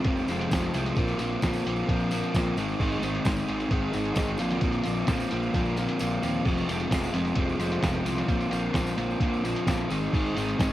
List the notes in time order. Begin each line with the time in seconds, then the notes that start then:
0.04 F1 F2 C3 F3 G#3 C4 F4, kick, closed hi-hat
0.17 tambourine
0.28 F1 F2 C3 F3 G#3 C4 F4, closed hi-hat, tambourine
0.41 closed hi-hat
0.51 F1 F2 C3 F3 G#3 C4 F4, kick, snare, closed hi-hat, tambourine
0.64 closed hi-hat
0.74 C2 F2 C3 F3 G#3 C4 F4, closed hi-hat, tambourine
0.85 closed hi-hat, tambourine
0.96 A#1 A#2 F3 A#3 C4 F4, kick, closed hi-hat, tambourine
1.08 closed hi-hat, tambourine
1.19 A#1 A#2 F3 A#3 C4 F4, closed hi-hat, tambourine
1.42 A#1 A#2 F3 A#3 C4 F4, kick, snare, closed hi-hat, tambourine
1.53 tambourine
1.65 A#1 A#2 F3 A#3 C4 F4, closed hi-hat, tambourine
1.76 tambourine
1.87 A#1 A#2 F3 A#3 C4 F4, kick, closed hi-hat
2.00 tambourine
2.11 A#2 F3 A#3 C4 F4, closed hi-hat, tambourine
2.24 closed hi-hat
2.34 A#1 A#2 F3 A#3 C4 F4, kick, snare, closed hi-hat, tambourine
2.56 G#1 G#2 D#3 G#3 C4 D#4 G#4, closed hi-hat, tambourine
2.69 tambourine
2.79 G#1 G#2 D#3 G#3 C4 D#4 G#4, kick, tambourine, crash
2.92 tambourine
3.02 G#1 G#2 D#3 G#3 C4 D#4 G#4, closed hi-hat, tambourine
3.15 closed hi-hat
3.25 G#1 G#2 D#3 G#3 C4 D#4 G#4, kick, snare, closed hi-hat, tambourine
3.36 tambourine
3.47 G#1 G#2 D#3 G#3 C4 D#4 G#4, closed hi-hat, tambourine
3.60 closed hi-hat, tambourine
3.71 G#1 G#2 D#3 G#3 C4 D#4 G#4, kick, closed hi-hat
3.93 G#1 G#2 D#3 G#3 C4 D#4 G#4, closed hi-hat, tambourine
4.05 closed hi-hat
4.14 G#1 G#2 D#3 G#3 C4 D#4 G#4, kick, snare, closed hi-hat, tambourine
4.27 closed hi-hat, tambourine
4.38 A#1 A#2 F3 A#3 C4 F4, closed hi-hat, tambourine
4.50 snare, closed hi-hat
4.61 A#1 A#2 F3 A#3 C4 F4, kick, closed hi-hat, tambourine
4.72 closed hi-hat, tambourine
4.84 A#1 A#2 F3 A#3 C4 F4, closed hi-hat, tambourine
4.97 tambourine
5.07 A#1 A#2 F3 A#3 C4 F4, kick, snare, closed hi-hat, tambourine
5.20 tambourine
5.31 A#1 A#2 F3 A#3 C4 F4, closed hi-hat
5.43 tambourine
5.53 A#1 A#2 F3 A#3 C4 F4, kick, closed hi-hat, tambourine
5.66 tambourine
5.77 A#2 F3 A#3 C4 F4, closed hi-hat, tambourine
5.88 closed hi-hat, tambourine
5.99 A#1 A#2 F3 A#3 C4 F4, closed hi-hat, tambourine
6.11 tambourine
6.23 D#2 A#2 F3 A#3 C4 F4, closed hi-hat, tambourine
6.35 tambourine
6.45 F1 F2 C3 F3 G#3 C4 F4, kick, tambourine, crash
6.58 tambourine
6.68 F1 F2 C3 F3 G#3 C4 F4, closed hi-hat, tambourine
6.80 closed hi-hat
6.91 F1 F2 C3 F3 G#3 C4 F4, kick, snare, closed hi-hat, tambourine
7.03 tambourine
7.14 F1 F2 C3 F3 G#3 C4 F4, closed hi-hat
7.25 closed hi-hat, tambourine
7.35 F1 F2 C3 F3 G#3 C4 F4, kick, closed hi-hat
7.49 tambourine
7.58 F1 F2 C3 F3 G#3 C4 F4, closed hi-hat, tambourine
7.72 closed hi-hat
7.82 F1 F2 C3 F3 G#3 C4 F4, kick, snare, closed hi-hat, tambourine
7.95 closed hi-hat, tambourine
8.04 C2 F2 C3 F3 G#3 C4 F4, closed hi-hat, tambourine
8.18 snare, closed hi-hat
8.27 A#1 A#2 F3 A#3 C4 F4, kick, closed hi-hat, tambourine
8.41 closed hi-hat, tambourine
8.51 A#1 A#2 F3 A#3 C4 F4, closed hi-hat, tambourine
8.74 A#1 A#2 F3 A#3 C4 F4, kick, snare, closed hi-hat, tambourine
8.87 tambourine
8.98 A#1 A#2 F3 A#3 C4 F4, closed hi-hat, tambourine
9.11 tambourine
9.20 A#1 A#2 F3 A#3 C4 F4, kick, closed hi-hat
9.34 tambourine
9.44 A#2 F3 A#3 C4 F4, closed hi-hat, tambourine
9.56 closed hi-hat
9.66 A#1 A#2 F3 A#3 C4 F4, kick, snare, closed hi-hat, tambourine
9.79 tambourine
9.90 G#1 G#2 D#3 G#3 C4 D#4 G#4, closed hi-hat, tambourine
10.03 tambourine
10.13 G#1 G#2 D#3 G#3 C4 D#4 G#4, kick, tambourine, crash
10.26 tambourine
10.36 G#1 G#2 D#3 G#3 C4 D#4 G#4, closed hi-hat, tambourine
10.49 closed hi-hat
10.58 G#1 G#2 D#3 G#3 C4 D#4 G#4, kick, snare, closed hi-hat, tambourine